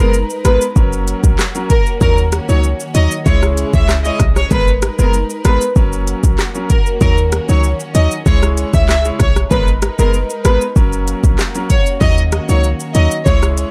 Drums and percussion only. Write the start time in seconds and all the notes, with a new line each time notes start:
0.14 shaker
0.30 shaker
0.45 cross-stick, closed hi-hat, shaker
0.61 shaker
0.76 kick, shaker
0.93 shaker
1.08 closed hi-hat, shaker
1.24 kick, shaker
1.39 cross-stick, clap, shaker
1.55 shaker
1.70 kick, closed hi-hat, shaker
1.86 shaker
2.01 kick, shaker
2.18 shaker
2.32 cross-stick, closed hi-hat, shaker
2.49 shaker
2.64 shaker
2.80 shaker
2.95 closed hi-hat, shaker
3.11 shaker
3.26 kick, shaker
3.43 cross-stick, shaker
3.57 closed hi-hat, shaker
3.74 kick, shaker
3.89 cross-stick, clap, shaker
4.05 shaker
4.19 kick, cross-stick, closed hi-hat, shaker
4.36 cross-stick, shaker
4.51 kick, shaker
4.68 shaker
4.82 cross-stick, closed hi-hat, shaker
4.99 shaker
5.14 shaker
5.30 shaker
5.45 cross-stick, closed hi-hat, shaker
5.61 shaker
5.76 kick, shaker
5.93 shaker
6.07 closed hi-hat, shaker
6.24 kick, shaker
6.39 cross-stick, clap, shaker
6.55 shaker
6.70 kick, closed hi-hat, shaker
6.86 shaker
7.01 kick, shaker
7.18 shaker
7.32 cross-stick, closed hi-hat, shaker
7.49 shaker
7.64 shaker
7.80 shaker
7.95 closed hi-hat, shaker
8.11 shaker
8.26 kick, shaker
8.43 cross-stick, shaker
8.57 closed hi-hat, shaker
8.74 kick, shaker
8.89 cross-stick, clap, shaker
9.05 shaker
9.19 kick, cross-stick, closed hi-hat, shaker
9.36 cross-stick, shaker
9.51 kick, shaker
9.68 shaker
9.82 cross-stick, closed hi-hat, shaker
9.99 shaker
10.14 shaker
10.30 shaker
10.45 cross-stick, closed hi-hat, shaker
10.61 shaker
10.76 kick, shaker
10.93 shaker
11.08 closed hi-hat, shaker
11.24 kick, shaker
11.39 cross-stick, clap, shaker
11.55 shaker
11.70 kick, closed hi-hat, shaker
11.86 shaker
12.01 kick, shaker
12.18 shaker
12.32 cross-stick, closed hi-hat, shaker
12.49 shaker
12.64 shaker
12.80 shaker
12.95 closed hi-hat, shaker
13.11 shaker
13.26 kick, shaker
13.43 cross-stick, shaker
13.58 closed hi-hat, shaker